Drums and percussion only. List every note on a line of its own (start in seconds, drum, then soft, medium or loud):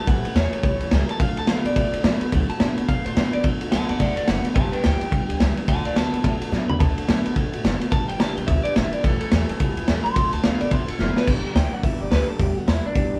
0.07 kick loud
0.07 ride medium
0.25 ride medium
0.36 snare loud
0.36 ride medium
0.53 ride medium
0.63 kick loud
0.63 ride medium
0.81 ride medium
0.91 snare loud
0.91 ride medium
1.09 ride medium
1.20 kick loud
1.20 ride medium
1.37 ride medium
1.47 snare loud
1.47 ride loud
1.65 ride medium
1.76 kick loud
1.76 ride medium
1.94 ride medium
2.04 snare loud
2.04 ride medium
2.21 ride medium
2.32 kick loud
2.32 ride medium
2.50 ride medium
2.60 snare loud
2.60 ride medium
2.78 ride medium
2.89 kick loud
2.89 ride medium
3.06 ride medium
3.17 snare loud
3.17 ride medium
3.33 ride medium
3.44 kick loud
3.44 ride medium
3.61 ride medium
3.72 snare loud
3.72 ride medium
3.89 ride medium
4.00 kick loud
4.00 ride medium
4.17 ride medium
4.28 snare loud
4.28 ride medium
4.45 ride medium
4.55 kick loud
4.55 ride medium
4.73 ride medium
4.84 snare loud
4.84 ride medium
5.01 ride medium
5.12 kick loud
5.12 ride medium
5.30 ride medium
5.40 snare loud
5.40 ride medium
5.57 ride medium
5.68 kick loud
5.68 ride medium
5.85 ride medium
5.96 snare loud
5.96 ride medium
6.14 ride medium
6.24 kick loud
6.24 ride medium
6.42 ride medium
6.52 snare medium
6.70 floor tom medium
6.80 kick loud
6.80 ride loud
6.98 ride medium
7.09 snare loud
7.09 ride medium
7.26 ride medium
7.36 kick loud
7.36 ride medium
7.53 ride medium
7.65 snare loud
7.65 ride medium
7.81 ride medium
7.92 kick loud
7.92 ride medium
8.09 ride medium
8.20 snare loud
8.20 ride medium
8.38 ride medium
8.48 kick loud
8.48 ride medium
8.65 ride medium
8.76 snare loud
8.76 ride medium
8.93 ride medium
9.04 kick loud
9.04 ride loud
9.21 ride medium
9.32 snare loud
9.32 ride loud
9.49 ride medium
9.60 kick loud
9.60 ride medium
9.77 ride medium
9.88 snare loud
9.88 ride medium
10.06 ride medium
10.16 kick loud
10.16 ride medium
10.33 ride medium
10.44 snare loud
10.44 ride medium
10.61 ride medium
10.71 kick loud
10.71 ride medium
10.88 ride medium
10.99 snare medium
11.16 snare medium
11.27 kick loud
11.27 crash loud
11.56 snare loud
11.56 open hi-hat medium
11.83 kick loud
11.83 open hi-hat medium
12.12 snare loud
12.12 open hi-hat medium
12.40 kick loud
12.40 open hi-hat medium
12.68 snare loud
12.68 open hi-hat medium
12.95 kick loud
12.95 open hi-hat soft